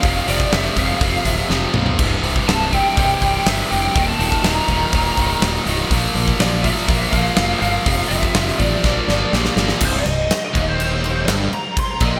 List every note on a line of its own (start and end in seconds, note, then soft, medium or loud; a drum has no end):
0.00 0.19 F1 medium
0.00 0.26 F2 medium
0.00 0.26 C3 loud
0.00 0.27 F3 loud
0.00 0.24 F5 loud
0.00 kick loud
0.00 open hi-hat medium
0.27 0.44 F1 medium
0.27 0.50 F2 medium
0.27 0.51 C3 loud
0.27 0.51 F3 loud
0.27 0.53 D5 medium
0.27 open hi-hat medium
0.40 kick medium
0.52 0.68 F1 medium
0.52 0.75 F2 medium
0.52 0.76 C3 medium
0.52 0.76 F3 medium
0.52 0.78 E5 medium
0.52 snare loud
0.52 open hi-hat medium
0.65 snare soft
0.76 0.92 F1 medium
0.76 1.00 F2 medium
0.76 1.00 C3 loud
0.76 1.01 F3 medium
0.76 1.27 F5 medium
0.76 kick medium
0.76 open hi-hat medium
1.01 1.16 F1 medium
1.01 1.24 F2 medium
1.01 1.25 C3 loud
1.01 1.25 F3 loud
1.01 kick loud
1.01 open hi-hat medium
1.25 1.41 D1 medium
1.25 1.49 F2 medium
1.25 1.49 C3 medium
1.25 1.50 F3 medium
1.25 1.47 E5 medium
1.25 kick medium
1.25 open hi-hat medium
1.50 1.65 F1 medium
1.50 1.73 F2 medium
1.50 1.73 C3 medium
1.50 1.74 F3 loud
1.50 snare medium
1.74 1.90 B1 medium
1.74 1.97 F2 medium
1.74 1.98 C3 medium
1.74 1.98 F3 medium
1.74 mid tom loud
1.86 floor tom medium
1.98 2.15 C1 medium
1.98 2.22 C2 loud
1.98 2.22 G2 loud
1.98 2.23 C3 loud
1.98 kick loud
1.98 crash loud
2.23 2.39 C1 medium
2.23 2.46 C2 medium
2.23 2.47 G2 medium
2.23 2.48 C3 medium
2.23 open hi-hat medium
2.36 kick medium
2.47 2.79 C1 medium
2.47 2.71 C2 medium
2.47 2.71 G2 medium
2.47 2.72 C3 medium
2.47 2.73 A5 medium
2.47 snare loud
2.47 open hi-hat medium
2.72 2.95 C2 medium
2.72 2.96 G2 medium
2.72 2.96 C3 medium
2.72 2.96 G5 medium
2.72 kick medium
2.72 open hi-hat medium
2.97 3.13 C1 loud
2.97 3.20 C2 medium
2.97 3.21 G2 medium
2.97 3.21 C3 loud
2.97 3.20 G5 medium
2.97 kick loud
2.97 open hi-hat medium
3.21 3.37 C1 medium
3.21 3.45 C2 medium
3.21 3.46 G2 medium
3.21 3.46 C3 medium
3.21 3.48 G5 medium
3.21 kick medium
3.21 open hi-hat medium
3.46 3.62 G1 medium
3.46 3.70 C2 medium
3.46 3.70 G2 medium
3.46 3.71 C3 medium
3.46 3.72 E5 medium
3.46 snare loud
3.46 open hi-hat medium
3.70 3.87 F1 medium
3.70 3.94 C2 medium
3.70 3.94 G2 medium
3.70 3.95 C3 loud
3.70 4.07 G5 loud
3.70 open hi-hat medium
3.94 4.11 D#1 medium
3.94 4.18 D#2 loud
3.94 4.19 A#2 loud
3.94 4.19 D#3 loud
3.94 kick loud
3.94 open hi-hat medium
4.07 4.45 A5 loud
4.19 4.35 D#1 medium
4.19 4.42 D#2 medium
4.19 4.43 A#2 medium
4.19 4.43 D#3 loud
4.19 open hi-hat medium
4.32 kick medium
4.43 4.59 D#1 medium
4.43 4.67 D#2 medium
4.43 4.68 A#2 medium
4.43 4.68 D#3 loud
4.43 5.62 A#5 medium
4.43 snare loud
4.43 open hi-hat medium
4.68 4.84 D#1 loud
4.68 4.93 D#2 medium
4.68 4.93 A#2 medium
4.68 4.93 D#3 loud
4.68 kick medium
4.68 open hi-hat medium
4.92 5.09 D#1 medium
4.92 5.17 D#2 loud
4.92 5.17 A#2 loud
4.92 5.18 D#3 loud
4.92 kick loud
4.92 open hi-hat medium
5.17 5.33 C1 medium
5.17 5.41 D#2 medium
5.17 5.42 A#2 medium
5.17 5.42 D#3 medium
5.17 kick medium
5.17 open hi-hat medium
5.42 5.57 D#1 loud
5.42 5.67 D#2 medium
5.42 5.67 A#2 medium
5.42 5.67 D#3 loud
5.42 snare loud
5.42 open hi-hat medium
5.66 5.82 C1 medium
5.66 5.90 D#2 medium
5.66 5.91 A#2 loud
5.66 5.91 D#3 loud
5.66 open hi-hat medium
5.90 6.06 A#1 loud
5.90 6.15 A#2 loud
5.90 6.16 F3 loud
5.90 6.16 A#3 loud
5.90 kick loud
5.90 open hi-hat medium
6.15 6.31 A#1 medium
6.15 6.39 A#2 medium
6.15 6.40 F3 medium
6.15 6.40 A#3 loud
6.15 open hi-hat medium
6.28 kick medium
6.40 6.70 A#1 loud
6.40 6.62 A#2 loud
6.40 6.64 F3 medium
6.40 6.63 A#3 medium
6.40 6.63 D5 medium
6.40 snare loud
6.40 open hi-hat medium
6.63 6.87 A#2 medium
6.63 6.87 F3 loud
6.63 6.88 A#3 loud
6.63 7.10 E5 loud
6.63 kick medium
6.63 open hi-hat medium
6.77 snare soft
6.88 7.04 A#1 loud
6.88 7.11 A#2 medium
6.88 7.12 F3 loud
6.88 7.12 A#3 loud
6.88 kick loud
6.88 open hi-hat medium
7.11 7.28 A#1 medium
7.11 7.36 A#2 medium
7.11 7.36 F3 loud
7.11 7.36 A#3 medium
7.11 7.58 F5 loud
7.11 kick medium
7.11 open hi-hat medium
7.36 7.53 F1 medium
7.36 7.60 A#2 medium
7.36 7.60 F3 loud
7.36 7.61 A#3 loud
7.36 snare loud
7.36 open hi-hat medium
7.60 7.77 G1 medium
7.60 7.85 A#2 medium
7.60 7.85 F3 medium
7.60 7.85 A#3 loud
7.60 8.08 F5 loud
7.60 open hi-hat medium
7.86 8.01 F1 medium
7.86 8.09 F2 loud
7.86 8.09 C3 loud
7.86 8.10 F3 loud
7.86 kick loud
7.86 open hi-hat medium
8.08 8.26 F1 medium
8.08 8.34 F2 medium
8.08 8.34 C3 loud
8.08 8.34 F3 loud
8.08 8.55 E5 loud
8.08 open hi-hat medium
8.23 kick medium
8.35 8.51 F1 medium
8.35 8.58 F2 medium
8.35 8.59 C3 medium
8.35 8.59 F3 loud
8.35 snare loud
8.35 open hi-hat medium
8.48 snare soft
8.58 8.75 A1 medium
8.58 8.82 F2 medium
8.58 8.83 C3 medium
8.58 8.83 F3 loud
8.58 9.52 D5 medium
8.58 kick medium
8.58 open hi-hat medium
8.84 8.99 A#1 medium
8.84 9.07 A#2 loud
8.84 9.08 F3 loud
8.84 9.08 A#3 loud
8.84 kick loud
8.84 snare medium
9.08 9.24 G1 medium
9.08 9.32 A#2 medium
9.08 9.32 F3 medium
9.08 9.33 A#3 medium
9.08 snare medium
9.33 9.48 A#1 medium
9.33 9.57 A#2 medium
9.33 9.58 F3 medium
9.33 9.58 A#3 loud
9.33 snare medium
9.45 snare medium
9.56 9.72 G1 medium
9.56 9.81 A#2 medium
9.56 9.81 F3 medium
9.56 9.81 A#3 medium
9.56 snare loud
9.68 snare medium
9.81 10.04 C1 medium
9.81 10.04 C2 loud
9.81 9.95 C5 medium
9.81 kick loud
9.81 crash loud
9.81 crash medium
9.97 10.43 D#5 medium
10.05 10.29 C1 medium
10.05 10.25 C2 medium
10.05 snare soft
10.05 crash medium
10.31 snare loud
10.31 crash medium
10.45 10.68 D#5 medium
10.54 11.24 D#1 medium
10.54 11.27 D#2 loud
10.54 kick loud
10.54 crash medium
10.69 10.79 C5 medium
10.80 11.27 C5 loud
10.80 crash medium
11.04 crash medium
11.27 11.51 G1 loud
11.27 11.51 G2 loud
11.27 snare loud
11.27 crash medium
11.53 11.77 A#5 loud
11.53 muted fingered electric bass stroke soft
11.53 muted distorted electric guitar stroke medium
11.53 crash medium
11.77 11.91 C6 medium
11.77 kick loud
11.77 crash medium
11.91 12.02 A#5 medium
12.00 12.20 A#1 medium
12.00 12.20 A#2 loud
12.00 kick loud
12.00 crash medium
12.05 12.15 D#5 medium
12.16 12.20 G5 medium